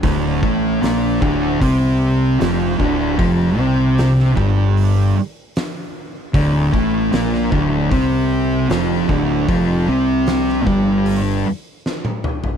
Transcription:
<<
  \new Staff \with { instrumentName = "Distorted electric guitar" } { \clef bass \time 4/4 \key d \minor \tempo 4 = 76 <d, d>8 <a, a>8 <bes, bes>8 <d, d>8 <c c'>4 <f, f>8 <d, d>8 | <f, f>8 <c c'>4 <g, g>4 r4. | <d, d>8 <a, a>8 <bes, bes>8 <d, d>8 <c c'>4 <f, f>8 <d, d>8 | <f, f>8 <c c'>4 <g, g>4 r4. | }
  \new Staff \with { instrumentName = "Distorted electric guitar" } { \clef bass \time 4/4 \key d \minor <d, d>8 <a, a>8 <bes, bes>8 <d, d>8 <c c'>4 <f, f>8 <d, d>8 | <f, f>8 <c c'>4 <g, g>4 r4. | <d, d>8 <a, a>8 <bes, bes>8 <d, d>8 <c c'>4 <f, f>8 <d, d>8 | <f, f>8 <c c'>4 <g, g>4 r4. | }
  \new Staff \with { instrumentName = "Fingered electric bass" } { \clef bass \time 4/4 \key d \minor d,,8 a,,8 bes,,8 d,,8 c,4 f,,8 d,,8 | f,,8 c,4 g,,4 r4. | d,,8 a,,8 bes,,8 d,,8 c,4 f,,8 d,,8 | f,,8 c,4 g,,4 r4. | }
  \new DrumStaff \with { instrumentName = "Drums" } \drummode { \time 4/4 <hho bd>8 bd8 <hho sn>8 bd8 <hho bd>4 <hho sn>8 bd8 | <hho bd>4 <hho sn>16 sn16 bd8 hho4 <hho sn>4 | <hho bd>8 bd8 <hho sn>16 sn16 bd8 <hho bd>4 <hho sn>8 bd8 | <hho bd>4 <hho sn>16 sn16 bd8 hho4 sn16 tommh16 toml16 tomfh16 | }
>>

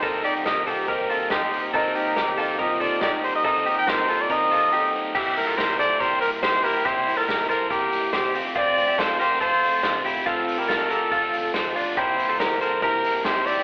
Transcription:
<<
  \new Staff \with { instrumentName = "Trumpet" } { \time 4/4 \key c \mixolydian \tempo 4 = 141 bes'8 d''8 ees''8 g'8 bes'4 c''8. r16 | r4 g'4 ees''8 d''8 d''8 c''16 ees''16 | ees''8. g''16 c''8. d''16 ees''4. r8 | g'8 bes'8 c''8 d''8 c''8 bes'8 c''8 bes'8 |
c''8. bes'8. bes'8 g'4 g'8. r16 | d''4 c''8 c''8 c''4~ c''16 r8. | a'8. bes'8. a'4. r4 | c''4 bes'8 bes'8 bes'4 c''8 d''8 | }
  \new Staff \with { instrumentName = "Clean electric guitar" } { \time 4/4 \key c \mixolydian <ees' a'>8 <ees' g'>8 <g' bes'>8 <f' a'>8 <g' bes'>8 <f' a'>8 <ees' g'>4 | <ees' a'>8 <ees' g'>8 <g' bes'>8 <f' a'>8 <g' bes'>8 <f' a'>8 <ees' g'>4 | <ees' a'>8 <ees' g'>8 <g' bes'>8 <f' a'>8 <g' bes'>8 <f' a'>8 <ees' g'>4 | <e' g'>8. <f' a'>16 <g' bes'>8 <a' c''>8 <g' bes'>4 <g' c''>8 <e' g'>8 |
<e' g'>8. <f' a'>16 <g' bes'>8 <a' c''>8 <g' bes'>4 <g' c''>8 <c' g'>8 | <c' f'>8. <e' g'>16 <f' a'>8 <g' bes'>8 <f' a'>4 <a' c''>8 <e' g'>8 | <c' f'>8. <e' g'>16 <f' a'>8 <g' bes'>8 <f' a'>4 <a' c''>8 <d' f'>8 | <e' g'>8. <f' a'>16 <g' bes'>8 <a' c''>8 <g' bes'>4 <g' c''>8 <e' g'>8 | }
  \new Staff \with { instrumentName = "Upright piano" } { \time 4/4 \key c \mixolydian <c' ees' c''>4 <c' ees' bes'>8 <c' ees' g'>8 <c' ees' c''>4 <c' ees' bes'>4 | <c' ees' bes'>4 <c' ees' bes'>8 <c' ees' bes'>8 <c' ees' f'>4 <c' ees' bes'>4 | <c' ees' bes'>4 <c' ees' bes'>8 <c' ees' bes'>8 <c' ees' bes'>4 <c' ees' a'>4 | r1 |
r1 | r1 | r1 | <c' e' bes'>4 <c' e' c''>4 <c' e' a''>4 <c' e' g'>4 | }
  \new Staff \with { instrumentName = "Overdriven electric guitar" } { \time 4/4 \key c \mixolydian <c g bes ees'>8 <g bes ees'>8 <c g bes ees'>8 <g bes ees'>8 <c g bes ees'>8 <g bes ees'>8 <c g bes ees'>8 <g bes ees'>8 | <c g bes ees'>8 <g bes ees'>8 <c g bes ees'>8 <g bes ees'>8 <c g bes ees'>8 <g bes ees'>8 <c g bes ees'>8 <g bes ees'>8 | <c g bes ees'>8 <g bes ees'>8 <c g bes ees'>8 <g bes ees'>8 <c g bes ees'>8 <g bes ees'>8 <c g bes ees'>8 <g bes ees'>8 | <c g bes e'>8 <g bes e'>8 <c g bes e'>8 <g bes e'>8 <c g bes e'>8 <g bes e'>8 <c g bes e'>8 <g bes e'>8 |
<c g bes e'>8 <g bes e'>8 <c g bes e'>8 <g bes e'>8 <c g bes e'>8 <g bes e'>8 <c g bes e'>8 <f a c' f'>8 | <f, c f a c' f'>8 <f a c' f'>8 <f a c' f'>8 <f a c' f'>8 <f, c f a c' f'>8 <f a c' f'>8 <f a c' f'>8 <f a c' f'>8 | <f, c f a c' f'>8 <f a c' f'>8 <f a c' f'>8 <f a c' f'>8 <f, c f a c' f'>8 <f a c' f'>8 <f a c' f'>8 <f a c' f'>8 | <c g bes e'>8 <g bes e'>8 <c g bes e'>8 <g bes e'>8 <c g bes e'>8 <g bes e'>8 <c g bes e'>8 <g bes e'>8 | }
  \new Staff \with { instrumentName = "Picked electric bass" } { \clef bass \time 4/4 \key c \mixolydian c,8 r16 c,16 c,8 c,8 c,8 c8 c,8 bes,,8 | c,8 r16 c,16 c,8 c,8 c,8 c8 c,8 bes,,8 | c,8 r16 c,16 c,8 c,8 c,8 c8 r4 | c,8 r16 c,16 r8 c,8 c,8 g,,8 bes,,8 bes,,8 |
c,8 r16 c,16 c,8 c,8 c,8 g,,8 bes,,8 f,,8~ | f,,8 r16 f,,16 f,,8 f,,8 f,,8 f,,8 e,,8 g,,8 | f,,8 r16 f,,16 f,,8 f,,8 f,,8 e,,8 f,,8 bes,,8 | c,8 r16 c,16 c,8 c,8 c,8 g,,8 bes,,8 bes,,8 | }
  \new DrumStaff \with { instrumentName = "Drums" } \drummode { \time 4/4 <hh bd>8 hho8 <hh bd sn>8 hho8 <hh bd>8 hho8 <hh bd sn>8 hho8 | <hh bd>8 hho8 <hh bd sn>8 hho8 <hh bd>8 hho8 <hh bd sn>8 hho8 | <hh bd>8 hho8 <hh bd sn>8 hho8 <hh bd>8 hho8 r4 | <cymc bd>8 <hho hhp>8 <hho hhp bd sn>8 <hho hhp>8 <hho hhp bd>8 <hho hhp>8 <hho hhp bd sn>8 <hho hhp>8 |
<hho hhp bd>8 <hho hhp>8 <hho hhp bd sn>8 <hho hhp>8 <hho hhp bd>8 <hho hhp>8 <hho hhp bd sn>8 <hho hhp>8 | <hho hhp bd>8 <hho hhp>8 <hho hhp bd sn>8 <hho hhp>8 <hho hhp bd>8 <hho hhp>8 <hho hhp bd sn>8 <hho hhp>8 | <hho hhp bd>8 <hho hhp>8 <hho hhp bd sn>8 <hho hhp>8 <hho hhp bd>8 <hho hhp>8 <hho hhp bd sn>8 <hho hhp>8 | <hho hhp bd>8 <hho hhp>8 <hho hhp bd sn>8 <hho hhp>8 <hho hhp bd>8 <hho hhp>8 <hho hhp bd sn>8 <hho hhp>8 | }
>>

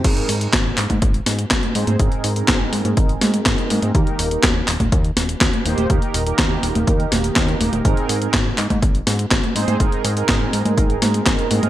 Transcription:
<<
  \new Staff \with { instrumentName = "Analog polysynth" } { \time 4/4 \key aes \major \tempo 4 = 123 <aes, c' ees' aes' bes'>8. <aes, c' ees' aes' bes'>16 r2 r8 <aes, c' ees' aes' c''>8 | <aes, c' ees' aes' bes'>8. <aes, c' ees' aes' bes'>2~ <aes, c' ees' aes' bes'>8. <c' ees' aes' bes'>8 | <ees bes ees' g' bes'>8. <ees bes ees' g' bes'>16 r2 r8 <ees bes ees' g' c''>8 | <ees bes ees' g' bes'>8. <ees bes ees' g' bes'>2~ <ees bes ees' g' bes'>8. <aes, bes ees' g' bes'>8 |
<aes, c' ees' aes' bes'>8. <aes, c' ees' aes' bes'>16 r2 r8 <aes, c' ees' aes' c''>8 | <aes, c' ees' aes' bes'>8. <aes, c' ees' aes' bes'>2~ <aes, c' ees' aes' bes'>8. <c' ees' aes' bes'>8 | }
  \new Staff \with { instrumentName = "Analog synth bass" } { \clef bass \time 4/4 \key aes \major aes,,16 r16 aes,8 aes,,8 aes,16 aes,16 aes,,8 aes,8 aes,,16 r16 aes,16 aes,16 | aes,,16 r16 aes,8 aes,,8 aes,16 aes,16 aes,,8 aes,8 aes,,16 r16 aes,16 aes,16 | ees,16 r16 ees,,8 ees,8 ees,,16 ees,,16 ees,8 ees,,8 ees,16 r16 ees,,16 ees,,16 | ees,16 r16 ees,,8 ees,8 ees,,16 ees,,16 ees,8 ees,,8 ees,8 ees,,16 ees,,16 |
aes,,16 r16 aes,8 aes,,8 aes,16 aes,16 aes,,8 aes,8 aes,,16 r16 aes,16 aes,16 | aes,,16 r16 aes,8 aes,,8 aes,16 aes,16 aes,,8 aes,8 aes,,16 r16 aes,16 aes,16 | }
  \new DrumStaff \with { instrumentName = "Drums" } \drummode { \time 4/4 <cymc hh bd>16 hh16 hho16 hh16 <hc hh bd sn>8 <hc hho>16 <cgho hh bd>16 <hh bd>16 hh16 <hho sn>16 hh16 <hc hh bd sn>16 <cgho hh>16 hho16 <cgho hh>16 | <hh bd>16 hh16 hho16 hh16 <hc hh bd sn>8 hho16 <cgho hh>16 <hh bd>16 hh16 <cgho hho sn>16 hh16 <hc hh bd sn>16 hh16 <cgho hho>16 <cgho hh>16 | <hh bd>16 hh16 hho16 hh16 <hc hh bd sn>8 <hc hho>16 <cgho hh bd>16 <hh bd>16 hh16 <hho sn>16 hh16 <hc hh bd sn>16 <cgho hh>16 hho16 <cgho hh>16 | <hh bd>16 hh16 hho16 hh16 <hc hh bd sn>8 hho16 <cgho hh>16 <hh bd>16 hh16 <cgho hho sn>16 hh16 <hc hh bd sn>16 hh16 <cgho hho>16 <cgho hh>16 |
<hh bd>16 hh16 hho16 hh16 <hc hh bd sn>8 <hc hho>16 <cgho hh bd>16 <hh bd>16 hh16 <hho sn>16 hh16 <hc hh bd sn>16 <cgho hh>16 hho16 <cgho hh>16 | <hh bd>16 hh16 hho16 hh16 <hc hh bd sn>8 hho16 <cgho hh>16 <hh bd>16 hh16 <cgho hho sn>16 hh16 <hc hh bd sn>16 hh16 <cgho hho>16 <cgho hh>16 | }
>>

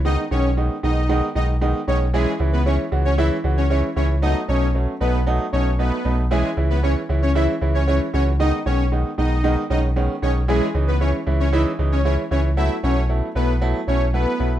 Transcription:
<<
  \new Staff \with { instrumentName = "Supersaw synth" } { \time 4/4 \key cis \minor \tempo 4 = 115 <dis' dis''>8 <cis' cis''>8 r8 <dis' dis''>8. r16 <dis' dis''>16 r8. <cis' cis''>16 r16 | <gis gis'>8 r16 <b b'>16 <cis' cis''>16 r8 <cis' cis''>16 <e' e''>16 r8 <cis' cis''>16 <cis' cis''>16 r16 <cis' cis''>16 r16 | <dis' dis''>8 <cis' cis''>8 r8 <b b'>8 r8 <cis' cis''>8 <b b'>8. r16 | <gis gis'>8 r16 <b b'>16 <cis' cis''>16 r8 <cis' cis''>16 <e' e''>16 r8 <cis' cis''>16 <cis' cis''>16 r16 <cis' cis''>16 r16 |
<dis' dis''>8 <cis' cis''>8 r8 <dis' dis''>8. r16 <dis' dis''>16 r8. <cis' cis''>16 r16 | <gis gis'>8 r16 <b b'>16 <cis' cis''>16 r8 <cis' cis''>16 <e' e''>16 r8 <cis' cis''>16 <cis' cis''>16 r16 <cis' cis''>16 r16 | <e' e''>8 <cis' cis''>8 r8 <b b'>8 r8 <cis' cis''>8 <b b'>8. r16 | }
  \new Staff \with { instrumentName = "Grand piano" } { \time 4/4 \key cis \minor <dis gis b dis'>8 <dis gis b dis'>8 <dis gis b dis'>8 <dis gis b dis'>8 <dis gis b dis'>8 <dis gis b dis'>8 <dis gis b dis'>8 <dis gis b dis'>8 | <e gis cis' e'>8 <e gis cis' e'>8 <e gis cis' e'>8 <e gis cis' fis'>8 <e gis cis' e'>8 <e gis cis' fis'>8 <e gis cis' e'>8 <e gis cis' e'>8 | <fis a b dis'>8 <fis a b dis'>8 <fis a b cis'>8 <fis a b dis'>8 <fis a b dis'>8 <fis a b dis'>8 <fis a b dis'>8 <fis a b dis'>8 | <e gis cis' e'>8 <e gis cis' e'>8 <e gis cis' e'>8 <e gis cis' e'>8 <e gis cis' e'>8 <e gis cis' e'>8 <e gis cis' e'>8 <e gis cis' fis'>8 |
<dis gis b dis'>8 <dis gis b cis'>8 <dis gis b dis'>8 <dis gis b dis'>8 <dis gis b dis'>8 <dis gis b cis'>8 <dis gis b cis'>8 <dis gis b dis'>8 | <e gis cis' e'>8 <e gis cis' dis'>8 <e gis cis' e'>8 <e gis cis' e'>8 <e gis cis' dis'>8 <e gis cis' dis'>8 <e gis cis' e'>8 <e gis cis' e'>8 | <fis a b e'>8 <fis a b e'>8 <fis a b e'>8 <fis a b e'>8 <fis a b e'>8 <fis a b e'>8 <fis a b e'>8 <fis a b e'>8 | }
  \new Staff \with { instrumentName = "Sub bass" } { \clef bass \time 4/4 \key cis \minor cis,8 b,,4 b,,4 b,,4 b,,8~ | b,,8 cis,4 cis,4 cis,4 cis,8~ | cis,8 b,,4 b,,4 b,,4 b,,8~ | b,,8 cis,4 cis,4 cis,4 cis,8~ |
cis,8 b,,4 b,,4 b,,4 b,,8~ | b,,8 cis,4 cis,4 cis,4 cis,8~ | cis,8 b,,4 b,,4 b,,4 b,,8 | }
>>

